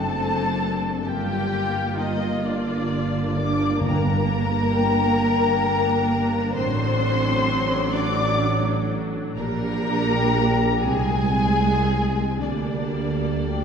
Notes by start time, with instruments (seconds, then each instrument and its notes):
Already playing: double bass section F#1, tuba F#1, harp F#2 C4 D4 D5, cello section A3, viola section C4 D4, violin section A4 A5
0.16 harp A4
0.40 harp C5
0.62 harp D5
0.85 harp A5
1.01 violin section A5
1.08 double bass section G1, tuba G1, harp G2, cello section G3, viola section A#3 F4, violin section G4 G5
1.31 harp A#3
1.53 harp A#4
1.76 harp F4
1.97 cello section D#3, violin section D#4 D#5, harp F5
2.22 harp A#5
2.44 cello section D3, violin section D4 D5, harp F5
2.67 harp A#4
2.90 harp F4
3.13 harp A#3
3.35 harp D3, cello section D4, violin section D5 D6
3.59 harp A#3
3.80 timpani G2, harp G2, cello section A#3, viola section D4, violin section A#4 A#5
4.04 harp D4
4.25 harp A#4
4.48 harp D5
4.71 harp G5
4.93 harp A#5
5.16 harp G5
5.62 harp G4
5.86 harp D4
6.08 harp D3
6.32 harp D4
6.54 double bass section A1, tuba A1, harp A2, viola section F#3, cello section C4, violin section C5 C6
6.78 harp D4
7.01 harp D5
7.25 harp F#4
7.48 harp F#5
7.71 harp D6
7.92 cello section D4, violin section D5 D6, harp F#5
8.40 harp F#4
8.65 harp D4
8.88 harp A3
9.12 harp D4
9.35 double bass section A#1, tuba A#1, harp A#2, viola section G3 D4, cello section A#3, violin section A#4 A#5
9.60 harp D4
9.85 harp D5
10.09 harp G4
10.36 harp G5
10.60 harp D6
10.82 tuba C2, double bass section C2, harp C3, cello section G#3, viola section G#3 C4, violin section G#4 G#5
11.11 harp D#4
11.37 harp C5
11.62 harp D#5
12.14 harp C6
12.39 double bass section D2, tuba D2, cello section D3, harp D3, viola section G3 A#3, violin section D4 D5
12.68 harp D4
12.94 harp A#4
13.20 harp D5
13.46 harp G5